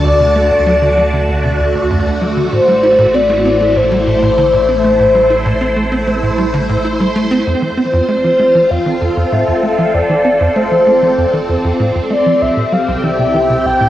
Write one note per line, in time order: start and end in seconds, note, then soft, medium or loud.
0.00 2.49 D2 medium
0.00 2.52 D3 medium
0.00 7.47 A3 medium
0.00 3.85 F#4 medium
0.00 4.50 D5 medium
0.00 3.33 A5 medium
0.05 0.12 D2 medium
0.05 0.33 D5 loud
0.20 0.28 C3 medium
0.36 0.40 A3 medium
0.36 1.55 D5 loud
0.51 0.59 D2 loud
0.66 0.74 F#3 medium
0.82 0.90 D3 medium
0.97 1.02 F#3 medium
1.13 1.21 D3 medium
1.28 1.36 D2 medium
1.44 1.51 C3 medium
1.59 1.67 D2 medium
1.75 1.82 D2 loud
1.90 2.02 F#2 medium
2.06 2.10 D2 medium
2.21 2.26 F#3 medium
2.37 2.44 D3 medium
2.52 7.44 A1 medium
2.52 7.47 A2 medium
2.52 2.60 A2 medium
2.52 3.16 C5 loud
2.68 2.75 G3 medium
2.83 2.88 E4 medium
2.98 3.06 A2 loud
3.14 3.22 C4 medium
3.14 3.78 D5 loud
3.21 7.47 E4 medium
3.30 3.37 A3 medium
3.45 3.50 C4 medium
3.61 3.68 A3 medium
3.76 3.83 A2 medium
3.76 6.85 C5 loud
3.91 3.99 G3 medium
3.91 8.73 C5 medium
4.07 4.14 A2 medium
4.22 4.30 A2 loud
4.38 4.49 D3 medium
4.53 4.58 A2 medium
4.69 4.73 C4 medium
4.84 4.92 A3 medium
4.99 5.07 A2 medium
5.15 5.23 G3 medium
5.30 5.35 E4 medium
5.46 5.53 A2 loud
5.61 5.69 C4 medium
5.76 5.84 A3 medium
5.92 5.97 C4 medium
6.07 6.15 A3 medium
6.23 6.31 A2 medium
6.38 6.46 G3 medium
6.54 6.62 D3 loud
6.69 6.77 A2 medium
6.85 6.93 E4 medium
7.00 7.08 G3 medium
7.16 7.27 A3 loud
7.31 7.39 C4 loud
7.47 12.39 F1 medium
7.47 7.55 F2 medium
7.47 13.89 C4 medium
7.47 13.89 D5 medium
7.62 7.70 E3 medium
7.77 7.82 C4 medium
7.77 12.42 F4 medium
7.77 8.72 C5 loud
7.93 8.01 F2 loud
8.08 8.16 A3 medium
8.24 8.32 F3 medium
8.39 8.44 A3 medium
8.55 8.63 F3 medium
8.70 8.78 F2 medium
8.70 9.34 F5 loud
8.82 13.27 A4 medium
8.86 8.94 E3 medium
9.01 9.09 F2 medium
9.17 9.25 F2 loud
9.32 9.44 A2 medium
9.32 9.96 E5 loud
9.48 9.52 F2 medium
9.63 9.68 A3 medium
9.78 9.86 F3 medium
9.94 10.02 F2 medium
9.94 10.55 D5 loud
10.09 10.17 E3 medium
10.25 10.30 C4 medium
10.40 10.48 F2 loud
10.56 10.64 A3 medium
10.56 11.76 C5 medium
10.71 10.79 F3 medium
10.87 10.92 A3 medium
11.02 11.10 F3 medium
11.18 11.26 F2 medium
11.33 11.41 E3 medium
11.49 11.57 F2 medium
11.64 11.72 F2 loud
11.80 11.91 A2 loud
11.95 12.00 F2 medium
12.10 12.15 A3 medium
12.10 12.43 D5 medium
12.26 12.34 F3 medium
12.41 12.49 C2 medium
12.41 13.89 C2 medium
12.41 13.89 C3 medium
12.41 12.74 E5 loud
12.57 12.65 A#2 medium
12.63 13.89 G4 medium
12.72 12.77 G3 medium
12.72 13.06 F5 medium
12.86 12.96 C2 loud
12.86 13.89 G5 medium
13.03 13.11 E3 medium
13.03 13.68 E5 loud
13.12 13.89 E4 medium
13.19 13.27 C3 medium
13.34 13.39 E3 medium
13.49 13.57 C3 medium
13.65 13.73 C2 medium
13.65 13.89 G5 loud
13.80 13.88 A#2 medium